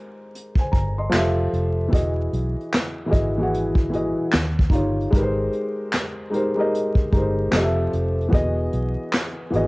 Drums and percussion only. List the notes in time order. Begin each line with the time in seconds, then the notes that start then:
0.35 closed hi-hat
0.55 kick
0.73 kick, closed hi-hat
1.13 snare, clap, closed hi-hat
1.53 closed hi-hat
1.93 kick, closed hi-hat
2.33 closed hi-hat
2.60 closed hi-hat
2.73 snare, clap, closed hi-hat
3.13 kick, closed hi-hat
3.54 closed hi-hat
3.75 kick
3.93 closed hi-hat
4.33 snare, clap, closed hi-hat
4.59 kick
4.70 kick, closed hi-hat
5.00 closed hi-hat
5.13 kick, closed hi-hat
5.53 closed hi-hat
5.93 snare, clap, closed hi-hat
6.33 closed hi-hat
6.75 closed hi-hat
6.95 kick
7.13 kick, closed hi-hat
7.53 snare, clap, closed hi-hat
7.93 closed hi-hat
8.21 closed hi-hat
8.33 kick, closed hi-hat
8.73 closed hi-hat
9.13 snare, clap, closed hi-hat
9.53 closed hi-hat